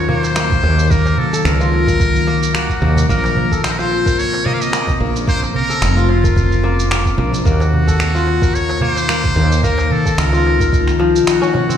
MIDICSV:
0, 0, Header, 1, 8, 480
1, 0, Start_track
1, 0, Tempo, 545455
1, 800, Time_signature, 4, 2, 24, 8
1, 10360, End_track
2, 0, Start_track
2, 0, Title_t, "Singing bowl"
2, 0, Program_c, 0, 14
2, 0, Note_on_c, 0, 77, 65
2, 10360, Note_off_c, 0, 77, 0
2, 10360, End_track
3, 0, Start_track
3, 0, Title_t, "Muted trumpet"
3, 0, Program_c, 1, 59
3, 0, Note_on_c, 1, 73, 95
3, 75, Note_off_c, 1, 73, 0
3, 75, Note_on_c, 1, 73, 110
3, 172, Note_off_c, 1, 73, 0
3, 172, Note_on_c, 1, 72, 110
3, 796, Note_on_c, 1, 70, 102
3, 810, Note_off_c, 1, 72, 0
3, 1044, Note_on_c, 1, 69, 101
3, 1057, Note_off_c, 1, 70, 0
3, 1272, Note_off_c, 1, 69, 0
3, 1277, Note_on_c, 1, 70, 107
3, 2241, Note_on_c, 1, 66, 93
3, 2254, Note_off_c, 1, 70, 0
3, 2715, Note_off_c, 1, 66, 0
3, 2720, Note_on_c, 1, 70, 99
3, 3167, Note_off_c, 1, 70, 0
3, 3198, Note_on_c, 1, 72, 107
3, 3267, Note_on_c, 1, 70, 82
3, 3281, Note_off_c, 1, 72, 0
3, 3332, Note_on_c, 1, 72, 102
3, 3345, Note_off_c, 1, 70, 0
3, 3682, Note_on_c, 1, 73, 116
3, 3695, Note_off_c, 1, 72, 0
3, 3919, Note_on_c, 1, 75, 108
3, 3933, Note_off_c, 1, 73, 0
3, 3992, Note_on_c, 1, 77, 92
3, 4005, Note_off_c, 1, 75, 0
3, 4058, Note_on_c, 1, 75, 108
3, 4071, Note_off_c, 1, 77, 0
3, 4402, Note_off_c, 1, 75, 0
3, 4648, Note_on_c, 1, 72, 115
3, 4754, Note_off_c, 1, 72, 0
3, 4885, Note_on_c, 1, 70, 119
3, 5363, Note_on_c, 1, 65, 93
3, 5376, Note_off_c, 1, 70, 0
3, 6321, Note_off_c, 1, 65, 0
3, 6560, Note_on_c, 1, 66, 104
3, 7520, Note_on_c, 1, 73, 115
3, 7533, Note_off_c, 1, 66, 0
3, 7759, Note_on_c, 1, 72, 122
3, 7772, Note_off_c, 1, 73, 0
3, 8472, Note_off_c, 1, 72, 0
3, 8477, Note_on_c, 1, 70, 102
3, 8722, Note_on_c, 1, 69, 96
3, 8735, Note_off_c, 1, 70, 0
3, 8960, Note_on_c, 1, 70, 102
3, 8973, Note_off_c, 1, 69, 0
3, 9680, Note_off_c, 1, 70, 0
3, 9919, Note_on_c, 1, 66, 91
3, 10360, Note_off_c, 1, 66, 0
3, 10360, End_track
4, 0, Start_track
4, 0, Title_t, "Ambient pad"
4, 0, Program_c, 2, 92
4, 0, Note_on_c, 2, 51, 80
4, 0, Note_on_c, 2, 54, 92
4, 0, Note_on_c, 2, 58, 76
4, 0, Note_on_c, 2, 77, 71
4, 2683, Note_off_c, 2, 51, 0
4, 2683, Note_off_c, 2, 77, 0
4, 2684, Note_off_c, 2, 54, 0
4, 2684, Note_off_c, 2, 58, 0
4, 2722, Note_on_c, 2, 58, 72
4, 2722, Note_on_c, 2, 60, 84
4, 2723, Note_on_c, 2, 49, 83
4, 4622, Note_off_c, 2, 58, 0
4, 6526, Note_off_c, 2, 49, 0
4, 6526, Note_off_c, 2, 60, 0
4, 6560, Note_on_c, 2, 58, 74
4, 6561, Note_on_c, 2, 77, 78
4, 6562, Note_on_c, 2, 51, 81
4, 8461, Note_off_c, 2, 77, 0
4, 8479, Note_on_c, 2, 63, 70
4, 10360, Note_off_c, 2, 51, 0
4, 10360, Note_off_c, 2, 58, 0
4, 10360, Note_off_c, 2, 63, 0
4, 10360, End_track
5, 0, Start_track
5, 0, Title_t, "Kora"
5, 0, Program_c, 3, 46
5, 0, Note_on_c, 3, 65, 78
5, 0, Note_on_c, 3, 70, 71
5, 75, Note_on_c, 3, 58, 76
5, 314, Note_off_c, 3, 58, 0
5, 318, Note_on_c, 3, 58, 78
5, 554, Note_off_c, 3, 58, 0
5, 557, Note_on_c, 3, 58, 72
5, 797, Note_off_c, 3, 58, 0
5, 801, Note_on_c, 3, 58, 87
5, 820, Note_off_c, 3, 65, 0
5, 847, Note_off_c, 3, 70, 0
5, 1171, Note_on_c, 3, 69, 81
5, 1224, Note_off_c, 3, 58, 0
5, 1411, Note_on_c, 3, 65, 79
5, 1653, Note_on_c, 3, 70, 70
5, 1705, Note_off_c, 3, 69, 0
5, 2001, Note_on_c, 3, 58, 75
5, 2240, Note_off_c, 3, 58, 0
5, 2243, Note_on_c, 3, 58, 81
5, 2477, Note_off_c, 3, 58, 0
5, 2480, Note_on_c, 3, 58, 70
5, 2717, Note_off_c, 3, 58, 0
5, 2721, Note_on_c, 3, 58, 88
5, 2743, Note_off_c, 3, 65, 0
5, 2773, Note_off_c, 3, 70, 0
5, 3093, Note_on_c, 3, 69, 73
5, 3146, Note_off_c, 3, 58, 0
5, 3335, Note_on_c, 3, 65, 76
5, 3573, Note_on_c, 3, 70, 72
5, 3626, Note_off_c, 3, 69, 0
5, 3923, Note_on_c, 3, 58, 76
5, 4155, Note_off_c, 3, 58, 0
5, 4159, Note_on_c, 3, 58, 82
5, 4399, Note_off_c, 3, 58, 0
5, 4402, Note_on_c, 3, 58, 71
5, 4638, Note_off_c, 3, 58, 0
5, 4641, Note_on_c, 3, 58, 86
5, 4667, Note_off_c, 3, 65, 0
5, 4693, Note_off_c, 3, 70, 0
5, 5012, Note_on_c, 3, 69, 75
5, 5065, Note_off_c, 3, 58, 0
5, 5251, Note_on_c, 3, 65, 82
5, 5491, Note_on_c, 3, 70, 75
5, 5543, Note_off_c, 3, 69, 0
5, 5840, Note_on_c, 3, 58, 78
5, 6078, Note_off_c, 3, 58, 0
5, 6081, Note_on_c, 3, 58, 83
5, 6316, Note_off_c, 3, 58, 0
5, 6320, Note_on_c, 3, 58, 70
5, 6554, Note_off_c, 3, 58, 0
5, 6558, Note_on_c, 3, 58, 82
5, 6583, Note_off_c, 3, 65, 0
5, 6611, Note_off_c, 3, 70, 0
5, 6929, Note_on_c, 3, 69, 75
5, 6982, Note_off_c, 3, 58, 0
5, 7170, Note_on_c, 3, 65, 79
5, 7408, Note_on_c, 3, 70, 80
5, 7461, Note_off_c, 3, 69, 0
5, 7757, Note_on_c, 3, 58, 77
5, 7993, Note_off_c, 3, 58, 0
5, 7997, Note_on_c, 3, 58, 84
5, 8234, Note_off_c, 3, 58, 0
5, 8237, Note_on_c, 3, 58, 71
5, 8477, Note_off_c, 3, 58, 0
5, 8480, Note_on_c, 3, 58, 90
5, 8501, Note_off_c, 3, 65, 0
5, 8529, Note_off_c, 3, 70, 0
5, 8848, Note_on_c, 3, 69, 76
5, 8901, Note_off_c, 3, 58, 0
5, 9087, Note_on_c, 3, 65, 83
5, 9329, Note_on_c, 3, 70, 78
5, 9381, Note_off_c, 3, 69, 0
5, 9676, Note_on_c, 3, 53, 100
5, 10046, Note_on_c, 3, 61, 113
5, 10154, Note_off_c, 3, 61, 0
5, 10158, Note_on_c, 3, 61, 77
5, 10288, Note_on_c, 3, 60, 80
5, 10341, Note_off_c, 3, 61, 0
5, 10360, Note_off_c, 3, 53, 0
5, 10360, Note_off_c, 3, 60, 0
5, 10360, Note_off_c, 3, 65, 0
5, 10360, Note_off_c, 3, 70, 0
5, 10360, End_track
6, 0, Start_track
6, 0, Title_t, "Fretless electric bass"
6, 0, Program_c, 4, 35
6, 0, Note_on_c, 4, 39, 94
6, 525, Note_off_c, 4, 39, 0
6, 559, Note_on_c, 4, 39, 94
6, 1005, Note_off_c, 4, 39, 0
6, 1276, Note_on_c, 4, 37, 97
6, 2443, Note_off_c, 4, 37, 0
6, 2479, Note_on_c, 4, 39, 103
6, 2676, Note_off_c, 4, 39, 0
6, 2722, Note_on_c, 4, 34, 94
6, 4366, Note_off_c, 4, 34, 0
6, 4405, Note_on_c, 4, 34, 94
6, 4847, Note_off_c, 4, 34, 0
6, 5120, Note_on_c, 4, 29, 96
6, 6285, Note_off_c, 4, 29, 0
6, 6318, Note_on_c, 4, 34, 105
6, 6515, Note_off_c, 4, 34, 0
6, 6560, Note_on_c, 4, 39, 100
6, 8205, Note_off_c, 4, 39, 0
6, 8238, Note_on_c, 4, 39, 93
6, 8684, Note_off_c, 4, 39, 0
6, 8957, Note_on_c, 4, 37, 99
6, 9919, Note_off_c, 4, 37, 0
6, 10360, End_track
7, 0, Start_track
7, 0, Title_t, "Darbuka"
7, 75, Note_on_c, 9, 64, 106
7, 163, Note_off_c, 9, 64, 0
7, 205, Note_on_c, 9, 63, 64
7, 293, Note_off_c, 9, 63, 0
7, 442, Note_on_c, 9, 64, 90
7, 530, Note_off_c, 9, 64, 0
7, 929, Note_on_c, 9, 63, 82
7, 1017, Note_off_c, 9, 63, 0
7, 1036, Note_on_c, 9, 64, 88
7, 1124, Note_off_c, 9, 64, 0
7, 1174, Note_on_c, 9, 62, 38
7, 1262, Note_off_c, 9, 62, 0
7, 1278, Note_on_c, 9, 63, 34
7, 1366, Note_off_c, 9, 63, 0
7, 1410, Note_on_c, 9, 62, 64
7, 1498, Note_off_c, 9, 62, 0
7, 1527, Note_on_c, 9, 63, 61
7, 1615, Note_off_c, 9, 63, 0
7, 1998, Note_on_c, 9, 62, 66
7, 2086, Note_off_c, 9, 62, 0
7, 2480, Note_on_c, 9, 64, 86
7, 2485, Note_on_c, 9, 62, 70
7, 2568, Note_off_c, 9, 64, 0
7, 2573, Note_off_c, 9, 62, 0
7, 2609, Note_on_c, 9, 64, 89
7, 2613, Note_on_c, 9, 62, 37
7, 2697, Note_off_c, 9, 64, 0
7, 2701, Note_off_c, 9, 62, 0
7, 2850, Note_on_c, 9, 63, 82
7, 2938, Note_off_c, 9, 63, 0
7, 2959, Note_on_c, 9, 64, 90
7, 3047, Note_off_c, 9, 64, 0
7, 3203, Note_on_c, 9, 63, 36
7, 3291, Note_off_c, 9, 63, 0
7, 3332, Note_on_c, 9, 62, 65
7, 3420, Note_off_c, 9, 62, 0
7, 3451, Note_on_c, 9, 63, 56
7, 3539, Note_off_c, 9, 63, 0
7, 3815, Note_on_c, 9, 63, 68
7, 3903, Note_off_c, 9, 63, 0
7, 3923, Note_on_c, 9, 64, 93
7, 4011, Note_off_c, 9, 64, 0
7, 4051, Note_on_c, 9, 63, 56
7, 4139, Note_off_c, 9, 63, 0
7, 4289, Note_on_c, 9, 64, 93
7, 4377, Note_off_c, 9, 64, 0
7, 4774, Note_on_c, 9, 63, 73
7, 4862, Note_off_c, 9, 63, 0
7, 4881, Note_on_c, 9, 64, 77
7, 4969, Note_off_c, 9, 64, 0
7, 5010, Note_on_c, 9, 62, 33
7, 5098, Note_off_c, 9, 62, 0
7, 5122, Note_on_c, 9, 63, 31
7, 5210, Note_off_c, 9, 63, 0
7, 5249, Note_on_c, 9, 62, 58
7, 5337, Note_off_c, 9, 62, 0
7, 5361, Note_on_c, 9, 63, 56
7, 5449, Note_off_c, 9, 63, 0
7, 5839, Note_on_c, 9, 62, 74
7, 5927, Note_off_c, 9, 62, 0
7, 6315, Note_on_c, 9, 64, 91
7, 6318, Note_on_c, 9, 62, 69
7, 6403, Note_off_c, 9, 64, 0
7, 6406, Note_off_c, 9, 62, 0
7, 6448, Note_on_c, 9, 62, 36
7, 6449, Note_on_c, 9, 64, 82
7, 6536, Note_off_c, 9, 62, 0
7, 6537, Note_off_c, 9, 64, 0
7, 6691, Note_on_c, 9, 63, 81
7, 6779, Note_off_c, 9, 63, 0
7, 6805, Note_on_c, 9, 64, 80
7, 6893, Note_off_c, 9, 64, 0
7, 7041, Note_on_c, 9, 63, 33
7, 7129, Note_off_c, 9, 63, 0
7, 7175, Note_on_c, 9, 62, 66
7, 7263, Note_off_c, 9, 62, 0
7, 7278, Note_on_c, 9, 63, 57
7, 7366, Note_off_c, 9, 63, 0
7, 7650, Note_on_c, 9, 63, 75
7, 7738, Note_off_c, 9, 63, 0
7, 7752, Note_on_c, 9, 64, 93
7, 7840, Note_off_c, 9, 64, 0
7, 7888, Note_on_c, 9, 63, 61
7, 7976, Note_off_c, 9, 63, 0
7, 8132, Note_on_c, 9, 64, 83
7, 8220, Note_off_c, 9, 64, 0
7, 8604, Note_on_c, 9, 63, 89
7, 8692, Note_off_c, 9, 63, 0
7, 8719, Note_on_c, 9, 64, 84
7, 8807, Note_off_c, 9, 64, 0
7, 8851, Note_on_c, 9, 62, 41
7, 8939, Note_off_c, 9, 62, 0
7, 8964, Note_on_c, 9, 63, 33
7, 9052, Note_off_c, 9, 63, 0
7, 9084, Note_on_c, 9, 62, 67
7, 9172, Note_off_c, 9, 62, 0
7, 9209, Note_on_c, 9, 63, 70
7, 9297, Note_off_c, 9, 63, 0
7, 9674, Note_on_c, 9, 62, 70
7, 9762, Note_off_c, 9, 62, 0
7, 10152, Note_on_c, 9, 62, 68
7, 10160, Note_on_c, 9, 64, 78
7, 10240, Note_off_c, 9, 62, 0
7, 10248, Note_off_c, 9, 64, 0
7, 10281, Note_on_c, 9, 62, 36
7, 10292, Note_on_c, 9, 64, 74
7, 10360, Note_off_c, 9, 62, 0
7, 10360, Note_off_c, 9, 64, 0
7, 10360, End_track
8, 0, Start_track
8, 0, Title_t, "Drums"
8, 214, Note_on_c, 9, 82, 70
8, 302, Note_off_c, 9, 82, 0
8, 316, Note_on_c, 9, 26, 98
8, 324, Note_on_c, 9, 82, 60
8, 404, Note_off_c, 9, 26, 0
8, 412, Note_off_c, 9, 82, 0
8, 449, Note_on_c, 9, 36, 109
8, 456, Note_on_c, 9, 82, 34
8, 537, Note_off_c, 9, 36, 0
8, 544, Note_off_c, 9, 82, 0
8, 696, Note_on_c, 9, 82, 65
8, 784, Note_off_c, 9, 82, 0
8, 797, Note_on_c, 9, 36, 124
8, 804, Note_on_c, 9, 82, 56
8, 885, Note_off_c, 9, 36, 0
8, 892, Note_off_c, 9, 82, 0
8, 936, Note_on_c, 9, 82, 36
8, 1024, Note_off_c, 9, 82, 0
8, 1176, Note_on_c, 9, 82, 74
8, 1264, Note_off_c, 9, 82, 0
8, 1279, Note_on_c, 9, 26, 99
8, 1286, Note_on_c, 9, 82, 58
8, 1367, Note_off_c, 9, 26, 0
8, 1374, Note_off_c, 9, 82, 0
8, 1417, Note_on_c, 9, 82, 35
8, 1505, Note_off_c, 9, 82, 0
8, 1649, Note_on_c, 9, 36, 106
8, 1658, Note_on_c, 9, 82, 68
8, 1737, Note_off_c, 9, 36, 0
8, 1746, Note_off_c, 9, 82, 0
8, 1759, Note_on_c, 9, 36, 114
8, 1767, Note_on_c, 9, 82, 57
8, 1847, Note_off_c, 9, 36, 0
8, 1855, Note_off_c, 9, 82, 0
8, 1898, Note_on_c, 9, 82, 33
8, 1986, Note_off_c, 9, 82, 0
8, 2138, Note_on_c, 9, 82, 69
8, 2226, Note_off_c, 9, 82, 0
8, 2241, Note_on_c, 9, 26, 108
8, 2248, Note_on_c, 9, 82, 57
8, 2329, Note_off_c, 9, 26, 0
8, 2336, Note_off_c, 9, 82, 0
8, 2372, Note_on_c, 9, 36, 63
8, 2381, Note_on_c, 9, 82, 35
8, 2460, Note_off_c, 9, 36, 0
8, 2469, Note_off_c, 9, 82, 0
8, 2620, Note_on_c, 9, 82, 67
8, 2708, Note_off_c, 9, 82, 0
8, 2722, Note_on_c, 9, 36, 110
8, 2730, Note_on_c, 9, 82, 54
8, 2810, Note_off_c, 9, 36, 0
8, 2818, Note_off_c, 9, 82, 0
8, 2863, Note_on_c, 9, 82, 35
8, 2951, Note_off_c, 9, 82, 0
8, 3093, Note_on_c, 9, 36, 62
8, 3102, Note_on_c, 9, 82, 68
8, 3181, Note_off_c, 9, 36, 0
8, 3190, Note_off_c, 9, 82, 0
8, 3205, Note_on_c, 9, 26, 104
8, 3213, Note_on_c, 9, 82, 56
8, 3293, Note_off_c, 9, 26, 0
8, 3301, Note_off_c, 9, 82, 0
8, 3342, Note_on_c, 9, 82, 32
8, 3430, Note_off_c, 9, 82, 0
8, 3574, Note_on_c, 9, 36, 101
8, 3582, Note_on_c, 9, 82, 66
8, 3662, Note_off_c, 9, 36, 0
8, 3670, Note_off_c, 9, 82, 0
8, 3690, Note_on_c, 9, 82, 56
8, 3778, Note_off_c, 9, 82, 0
8, 3821, Note_on_c, 9, 82, 34
8, 3909, Note_off_c, 9, 82, 0
8, 4063, Note_on_c, 9, 82, 62
8, 4151, Note_off_c, 9, 82, 0
8, 4164, Note_on_c, 9, 26, 94
8, 4172, Note_on_c, 9, 82, 55
8, 4252, Note_off_c, 9, 26, 0
8, 4260, Note_off_c, 9, 82, 0
8, 4294, Note_on_c, 9, 36, 93
8, 4303, Note_on_c, 9, 82, 32
8, 4382, Note_off_c, 9, 36, 0
8, 4391, Note_off_c, 9, 82, 0
8, 4543, Note_on_c, 9, 82, 61
8, 4631, Note_off_c, 9, 82, 0
8, 4643, Note_on_c, 9, 36, 117
8, 4652, Note_on_c, 9, 82, 55
8, 4731, Note_off_c, 9, 36, 0
8, 4740, Note_off_c, 9, 82, 0
8, 4782, Note_on_c, 9, 82, 33
8, 4870, Note_off_c, 9, 82, 0
8, 5022, Note_on_c, 9, 82, 64
8, 5110, Note_off_c, 9, 82, 0
8, 5122, Note_on_c, 9, 26, 92
8, 5130, Note_on_c, 9, 82, 58
8, 5210, Note_off_c, 9, 26, 0
8, 5218, Note_off_c, 9, 82, 0
8, 5261, Note_on_c, 9, 82, 32
8, 5349, Note_off_c, 9, 82, 0
8, 5491, Note_on_c, 9, 36, 102
8, 5500, Note_on_c, 9, 82, 67
8, 5579, Note_off_c, 9, 36, 0
8, 5588, Note_off_c, 9, 82, 0
8, 5601, Note_on_c, 9, 36, 111
8, 5609, Note_on_c, 9, 82, 55
8, 5689, Note_off_c, 9, 36, 0
8, 5697, Note_off_c, 9, 82, 0
8, 5740, Note_on_c, 9, 82, 34
8, 5828, Note_off_c, 9, 82, 0
8, 5980, Note_on_c, 9, 82, 66
8, 6068, Note_off_c, 9, 82, 0
8, 6082, Note_on_c, 9, 26, 95
8, 6089, Note_on_c, 9, 82, 55
8, 6170, Note_off_c, 9, 26, 0
8, 6177, Note_off_c, 9, 82, 0
8, 6211, Note_on_c, 9, 36, 57
8, 6220, Note_on_c, 9, 82, 34
8, 6299, Note_off_c, 9, 36, 0
8, 6308, Note_off_c, 9, 82, 0
8, 6459, Note_on_c, 9, 82, 62
8, 6547, Note_off_c, 9, 82, 0
8, 6560, Note_on_c, 9, 36, 115
8, 6569, Note_on_c, 9, 82, 53
8, 6648, Note_off_c, 9, 36, 0
8, 6657, Note_off_c, 9, 82, 0
8, 6698, Note_on_c, 9, 82, 34
8, 6786, Note_off_c, 9, 82, 0
8, 6930, Note_on_c, 9, 36, 60
8, 6938, Note_on_c, 9, 82, 63
8, 7018, Note_off_c, 9, 36, 0
8, 7026, Note_off_c, 9, 82, 0
8, 7039, Note_on_c, 9, 26, 98
8, 7047, Note_on_c, 9, 82, 55
8, 7127, Note_off_c, 9, 26, 0
8, 7135, Note_off_c, 9, 82, 0
8, 7178, Note_on_c, 9, 82, 31
8, 7266, Note_off_c, 9, 82, 0
8, 7410, Note_on_c, 9, 36, 106
8, 7418, Note_on_c, 9, 82, 64
8, 7498, Note_off_c, 9, 36, 0
8, 7506, Note_off_c, 9, 82, 0
8, 7527, Note_on_c, 9, 82, 51
8, 7615, Note_off_c, 9, 82, 0
8, 7657, Note_on_c, 9, 82, 31
8, 7745, Note_off_c, 9, 82, 0
8, 7896, Note_on_c, 9, 82, 63
8, 7984, Note_off_c, 9, 82, 0
8, 7999, Note_on_c, 9, 26, 102
8, 8006, Note_on_c, 9, 82, 57
8, 8087, Note_off_c, 9, 26, 0
8, 8094, Note_off_c, 9, 82, 0
8, 8130, Note_on_c, 9, 36, 97
8, 8138, Note_on_c, 9, 82, 33
8, 8218, Note_off_c, 9, 36, 0
8, 8226, Note_off_c, 9, 82, 0
8, 8377, Note_on_c, 9, 82, 64
8, 8465, Note_off_c, 9, 82, 0
8, 8480, Note_on_c, 9, 36, 105
8, 8487, Note_on_c, 9, 82, 56
8, 8568, Note_off_c, 9, 36, 0
8, 8575, Note_off_c, 9, 82, 0
8, 8618, Note_on_c, 9, 82, 34
8, 8706, Note_off_c, 9, 82, 0
8, 8850, Note_on_c, 9, 36, 64
8, 8858, Note_on_c, 9, 82, 67
8, 8938, Note_off_c, 9, 36, 0
8, 8946, Note_off_c, 9, 82, 0
8, 8961, Note_on_c, 9, 26, 104
8, 8968, Note_on_c, 9, 82, 55
8, 9049, Note_off_c, 9, 26, 0
8, 9056, Note_off_c, 9, 82, 0
8, 9100, Note_on_c, 9, 82, 30
8, 9188, Note_off_c, 9, 82, 0
8, 9330, Note_on_c, 9, 36, 103
8, 9338, Note_on_c, 9, 82, 67
8, 9418, Note_off_c, 9, 36, 0
8, 9426, Note_off_c, 9, 82, 0
8, 9440, Note_on_c, 9, 36, 109
8, 9447, Note_on_c, 9, 82, 53
8, 9528, Note_off_c, 9, 36, 0
8, 9535, Note_off_c, 9, 82, 0
8, 9570, Note_on_c, 9, 26, 34
8, 9578, Note_on_c, 9, 82, 32
8, 9658, Note_off_c, 9, 26, 0
8, 9666, Note_off_c, 9, 82, 0
8, 9818, Note_on_c, 9, 82, 66
8, 9906, Note_off_c, 9, 82, 0
8, 9920, Note_on_c, 9, 26, 105
8, 9928, Note_on_c, 9, 82, 54
8, 10008, Note_off_c, 9, 26, 0
8, 10016, Note_off_c, 9, 82, 0
8, 10059, Note_on_c, 9, 82, 31
8, 10147, Note_off_c, 9, 82, 0
8, 10300, Note_on_c, 9, 82, 65
8, 10360, Note_off_c, 9, 82, 0
8, 10360, End_track
0, 0, End_of_file